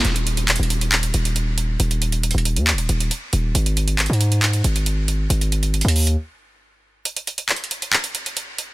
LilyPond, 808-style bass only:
\new Staff \with { instrumentName = "808-style bass" } { \clef bass \time 4/4 \key aes \dorian \tempo 4 = 137 ees,,4~ ees,,16 ees,,4~ ees,,16 ees,,4. | ees,,4~ ees,,16 ees,,8 ees,16. ees,,16. ees,,8 r8 ees,,8 | aes,,4~ aes,,16 aes,4~ aes,16 aes,,4. | aes,,4~ aes,,16 ees,8. r2 |
r1 | }